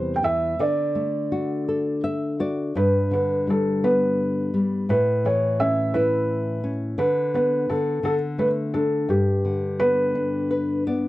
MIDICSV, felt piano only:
0, 0, Header, 1, 2, 480
1, 0, Start_track
1, 0, Key_signature, 1, "major"
1, 0, Tempo, 717703
1, 401, Time_signature, 6, 3, 24, 8
1, 2325, Tempo, 705053
1, 7504, End_track
2, 0, Start_track
2, 0, Title_t, "Felt piano"
2, 0, Program_c, 0, 0
2, 0, Note_on_c, 0, 72, 81
2, 90, Note_off_c, 0, 72, 0
2, 106, Note_on_c, 0, 79, 62
2, 158, Note_off_c, 0, 79, 0
2, 161, Note_on_c, 0, 76, 81
2, 403, Note_on_c, 0, 74, 79
2, 408, Note_off_c, 0, 76, 0
2, 1339, Note_off_c, 0, 74, 0
2, 1850, Note_on_c, 0, 71, 79
2, 2071, Note_off_c, 0, 71, 0
2, 2096, Note_on_c, 0, 71, 67
2, 2313, Note_off_c, 0, 71, 0
2, 2342, Note_on_c, 0, 69, 71
2, 2573, Note_on_c, 0, 71, 83
2, 2581, Note_off_c, 0, 69, 0
2, 3262, Note_off_c, 0, 71, 0
2, 3294, Note_on_c, 0, 71, 86
2, 3535, Note_off_c, 0, 71, 0
2, 3538, Note_on_c, 0, 73, 73
2, 3769, Note_on_c, 0, 76, 84
2, 3776, Note_off_c, 0, 73, 0
2, 4002, Note_on_c, 0, 71, 87
2, 4010, Note_off_c, 0, 76, 0
2, 4507, Note_off_c, 0, 71, 0
2, 4714, Note_on_c, 0, 71, 80
2, 4953, Note_off_c, 0, 71, 0
2, 4963, Note_on_c, 0, 71, 74
2, 5197, Note_on_c, 0, 69, 72
2, 5203, Note_off_c, 0, 71, 0
2, 5417, Note_off_c, 0, 69, 0
2, 5438, Note_on_c, 0, 69, 83
2, 5491, Note_off_c, 0, 69, 0
2, 5671, Note_on_c, 0, 71, 77
2, 5725, Note_off_c, 0, 71, 0
2, 5907, Note_on_c, 0, 69, 71
2, 6152, Note_on_c, 0, 67, 69
2, 6156, Note_off_c, 0, 69, 0
2, 6627, Note_on_c, 0, 71, 94
2, 7094, Note_off_c, 0, 67, 0
2, 7334, Note_off_c, 0, 71, 0
2, 7504, End_track
0, 0, End_of_file